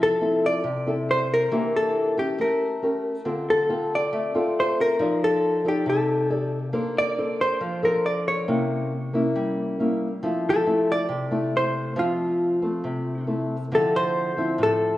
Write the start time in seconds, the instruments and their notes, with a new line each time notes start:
Already playing: nylon-string guitar F3 C4 E4 A4
0.03 hollow-body jazz guitar A4
0.21 nylon-string guitar C4 E4 A4
0.46 hollow-body jazz guitar D5
0.64 nylon-string guitar C3
0.87 nylon-string guitar C4 E4 A4
1.11 hollow-body jazz guitar C5
1.34 hollow-body jazz guitar A#4
1.51 nylon-string guitar E3 A#3 D4 G4
1.76 hollow-body jazz guitar A4
2.17 nylon-string guitar C#4 G4, hollow-body jazz guitar G4
2.38 nylon-string guitar A3, hollow-body jazz guitar A#4
2.82 nylon-string guitar C#4 G4 A#4
3.25 nylon-string guitar D3 C4 F4 A4
3.50 hollow-body jazz guitar A4
3.69 nylon-string guitar C4 F4 A4
3.95 hollow-body jazz guitar D5
4.13 nylon-string guitar A3
4.34 nylon-string guitar C4 F4 A4
4.60 hollow-body jazz guitar C5
4.81 hollow-body jazz guitar A#4
4.99 nylon-string guitar F3 D#4 A4 D5
5.24 hollow-body jazz guitar A4
5.65 nylon-string guitar D#4 A4 D5, hollow-body jazz guitar G4
5.86 nylon-string guitar C3, hollow-body jazz guitar A4
6.30 nylon-string guitar D#4 A4 D5
6.35 hollow-body jazz guitar G4
6.73 nylon-string guitar A#3 D4 A4 C5
6.98 hollow-body jazz guitar D5
7.18 nylon-string guitar D4 A4 C5
7.41 hollow-body jazz guitar C5
7.61 nylon-string guitar F3
7.83 nylon-string guitar D4 A4 C5, hollow-body jazz guitar A#4
8.06 hollow-body jazz guitar D5
8.28 hollow-body jazz guitar C#5
8.48 nylon-string guitar C3 A#3 C#4 E4
9.13 nylon-string guitar A#3 C#4 E4
9.36 nylon-string guitar G3
9.80 nylon-string guitar A#3 C#4 E4
10.23 nylon-string guitar F3 A3 C4 E4
10.50 hollow-body jazz guitar A4
10.66 nylon-string guitar A3 C4 E4
10.92 hollow-body jazz guitar D5
11.09 nylon-string guitar C3
11.31 nylon-string guitar A3 C4 E4
11.57 hollow-body jazz guitar C5
11.96 nylon-string guitar F3 A3 C4, hollow-body jazz guitar F4
12.62 nylon-string guitar A3 C4
12.84 nylon-string guitar C3
13.27 nylon-string guitar A3 C4 E4
13.72 nylon-string guitar D3 F3 C4 E4, flute A4, hollow-body jazz guitar A4
13.93 flute C5, hollow-body jazz guitar C5
14.37 nylon-string guitar F3 C4 E4
14.58 nylon-string guitar A2, flute A4
14.63 hollow-body jazz guitar A4